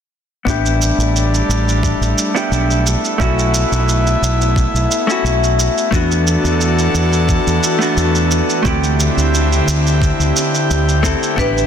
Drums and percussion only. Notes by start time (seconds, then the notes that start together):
0.47 kick, shaker
0.66 shaker
0.82 shaker
1.00 shaker
1.16 shaker
1.34 shaker
1.50 shaker
1.69 shaker
1.83 kick, shaker
2.02 shaker
2.18 shaker
2.36 shaker
2.52 shaker
2.71 shaker
2.87 shaker
3.05 shaker
3.20 kick, shaker
3.39 shaker
3.54 shaker
3.73 shaker
3.89 shaker
4.07 shaker
4.24 shaker
4.42 shaker
4.56 kick, shaker
4.76 shaker
4.91 shaker
5.10 shaker
5.26 shaker
5.44 shaker
5.60 shaker
5.78 shaker
5.92 kick, shaker
6.11 shaker
6.27 shaker
6.45 shaker
6.61 shaker
6.79 shaker
6.95 shaker
7.13 shaker
7.29 kick, shaker
7.47 shaker
7.63 shaker
7.82 shaker
7.98 shaker
8.15 shaker
8.31 shaker
8.50 shaker
8.65 kick, shaker
8.84 shaker
9.00 shaker
9.18 shaker
9.35 shaker
9.53 shaker
9.68 shaker
9.87 shaker
10.02 kick, shaker
10.20 shaker
10.37 shaker
10.55 shaker
10.71 shaker
10.89 shaker
11.04 kick, shaker
11.23 shaker
11.38 kick, shaker
11.58 shaker